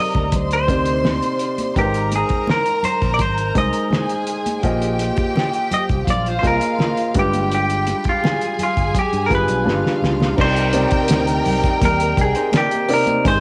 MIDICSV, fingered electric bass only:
0, 0, Header, 1, 3, 480
1, 0, Start_track
1, 0, Key_signature, -3, "minor"
1, 0, Tempo, 717703
1, 1180, Time_signature, 4, 2, 24, 8
1, 8963, End_track
2, 0, Start_track
2, 0, Title_t, "Fingered electric bass"
2, 0, Program_c, 0, 33
2, 101, Note_on_c, 0, 38, 77
2, 794, Note_off_c, 0, 38, 0
2, 1181, Note_on_c, 0, 32, 90
2, 1487, Note_off_c, 0, 32, 0
2, 2022, Note_on_c, 0, 34, 74
2, 2124, Note_off_c, 0, 34, 0
2, 2141, Note_on_c, 0, 32, 66
2, 2345, Note_off_c, 0, 32, 0
2, 2377, Note_on_c, 0, 36, 90
2, 2481, Note_off_c, 0, 36, 0
2, 3103, Note_on_c, 0, 34, 88
2, 3409, Note_off_c, 0, 34, 0
2, 3945, Note_on_c, 0, 36, 83
2, 4046, Note_off_c, 0, 36, 0
2, 4065, Note_on_c, 0, 34, 67
2, 4268, Note_off_c, 0, 34, 0
2, 4306, Note_on_c, 0, 36, 87
2, 4407, Note_off_c, 0, 36, 0
2, 4785, Note_on_c, 0, 31, 71
2, 5295, Note_off_c, 0, 31, 0
2, 5867, Note_on_c, 0, 31, 76
2, 5968, Note_off_c, 0, 31, 0
2, 6105, Note_on_c, 0, 43, 65
2, 6207, Note_off_c, 0, 43, 0
2, 6227, Note_on_c, 0, 31, 77
2, 6328, Note_off_c, 0, 31, 0
2, 6348, Note_on_c, 0, 35, 74
2, 6448, Note_off_c, 0, 35, 0
2, 6468, Note_on_c, 0, 31, 80
2, 6568, Note_off_c, 0, 31, 0
2, 6702, Note_on_c, 0, 37, 75
2, 6907, Note_off_c, 0, 37, 0
2, 6946, Note_on_c, 0, 36, 93
2, 7252, Note_off_c, 0, 36, 0
2, 7421, Note_on_c, 0, 38, 99
2, 7627, Note_off_c, 0, 38, 0
2, 7663, Note_on_c, 0, 36, 73
2, 7766, Note_off_c, 0, 36, 0
2, 7905, Note_on_c, 0, 39, 94
2, 8109, Note_off_c, 0, 39, 0
2, 8145, Note_on_c, 0, 36, 83
2, 8247, Note_off_c, 0, 36, 0
2, 8866, Note_on_c, 0, 32, 100
2, 8963, Note_off_c, 0, 32, 0
2, 8963, End_track
3, 0, Start_track
3, 0, Title_t, "Muted fingered electric bass strokes"
3, 1903, Note_on_c, 9, 29, 41
3, 1970, Note_off_c, 9, 29, 0
3, 3829, Note_on_c, 9, 29, 39
3, 3896, Note_off_c, 9, 29, 0
3, 5751, Note_on_c, 9, 29, 38
3, 5818, Note_off_c, 9, 29, 0
3, 8963, End_track
0, 0, End_of_file